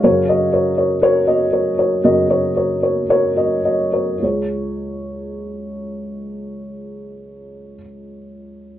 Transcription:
X:1
M:4/4
L:1/8
Q:"Swing 16ths" 1/4=104
K:Gblyd
V:1 name="Felt piano"
[GBdf] [GBe] [GBd] [GBd] [GBd] [GBe] [GBd] [GBd] | [GBe] [GBd] [GBd] [GBd] [GBd] [GBe] [GBe] [GBd] | [FAd]8- | [FAd]8 |]
V:2 name="Felt piano" clef=bass
[G,,D,]8 | [G,,D,]8 | D,,8- | D,,8 |]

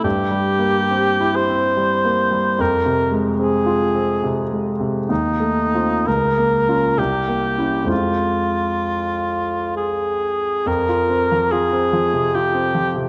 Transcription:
X:1
M:3/4
L:1/16
Q:1/4=70
K:Fm
V:1 name="Cor anglais"
G6 c6 | B2 z2 A6 z2 | E4 B4 G4 | F8 A4 |
B4 A4 G4 |]
V:2 name="Grand piano"
(3G,,2 G,2 B,2 (3C2 =E2 C2 (3G,2 B,2 G,2 | (3F,,2 C,2 A,2 (3C2 F2 C2 (3C,2 A,2 C,2 | (3E,,2 =A,2 [CF]2 (3D,,2 B,2 [DF]2 (3C,,2 B,2 [D=E]2 | [F,,A,CF]12 |
F,, F C F, F C F, C, F C F, C, |]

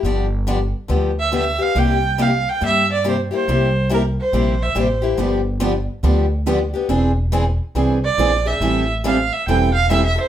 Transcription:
X:1
M:4/4
L:1/8
Q:"Swing" 1/4=140
K:C
V:1 name="Violin"
z4 z e e f | g2 f g e d c c- | c2 _B c2 e c2 | z8 |
z4 z d2 e- | e z f e g f (3e e c |]
V:2 name="Steel-string acoustic guitar"
[D,F,B,DG] z [D,F,B,DG] z [D,F,B,DG] z [D,F,B,DG] [B,DG] | [C,G,_B,EG] z [C,G,B,EG] z [C,G,B,EG] z [C,G,B,EG] [B,EG] | [C,G,_B,EG] z [C,G,B,EG] z [C,G,B,EG] z [C,G,B,EG] [B,EG] | [D,F,B,DG] z [D,F,B,DG] z [D,F,B,DG] z [D,F,B,DG] [B,DG] |
[E,^B,D^G] z [E,B,DG] z [E,B,DG] z [E,B,DG] [B,DG] | [E,G,CEA] z [E,G,CEA] z [E,G,CEA] z [E,G,CEA] [CEA] |]
V:3 name="Steel-string acoustic guitar"
z8 | z8 | z8 | [D,F,B,DG] z [D,F,B,DG] z [D,F,B,DG] z [D,F,B,DG] z |
[E,^B,D^G^B] z [E,B,DGB] z [E,B,DGB] z [E,B,DGB] z | [E,G,CEA] z [E,G,CEA] z [E,G,CEA] z [E,G,CEA] z |]
V:4 name="Upright bass" clef=bass
G,,,4 D,,4 | C,,4 G,,4 | C,,4 _B,,,2 A,,,2 | G,,,4 D,,4 |
E,,,4 ^B,,,2 _B,,,2 | A,,,4 E,,,4 |]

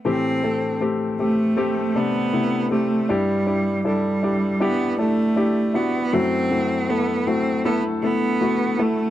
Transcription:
X:1
M:4/4
L:1/8
Q:1/4=79
K:Ador
V:1 name="Grand piano"
[A,CG] [A,CA] [A,CG] [A,CG] [A,CG] [C,A,D] [C,A,E] [A,CG] | [DEG] [DEG] [DEA] [DEG] [DEG] [DEA] [DEG] [DEF] | [A,EF] [A,EF] [A,EA] [A,EF] [A,EA] [A,EA] [A,EF] [A,EA] |]
V:2 name="Grand piano" clef=bass
[A,,E,]8 | [G,,G,]8 | [F,,F,]8 |]
V:3 name="Cello"
C2 z A,2 B,2 A, | G,2 G,2 B, A,2 B, | C2 B, C B, B,2 A, |]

